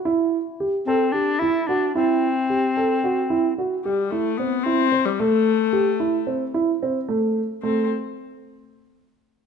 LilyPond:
<<
  \new Staff \with { instrumentName = "Grand piano" } { \time 7/8 \key a \dorian \tempo 4 = 111 e'4 g'8 a'8 g'8 e'8 fis'8 | e'4 g'8 a'8 fis'8 e'8 fis'8 | g'8 e'8 c'8 e'8 c'8 a4 | g'8 e'8 c'8 e'8 c'8 a4 |
a8 r2. | }
  \new Staff \with { instrumentName = "Recorder" } { \time 7/8 \key a \dorian r4. c'8 d'8 e'8 d'8 | c'2. r8 | r2. r8 | r2. r8 |
r2. r8 | }
  \new Staff \with { instrumentName = "Viola" } { \time 7/8 \key a \dorian r2. r8 | r2. r8 | g8 a8 b8 c'8. g16 a4~ | a4 r2 r8 |
c'8 r2. | }
>>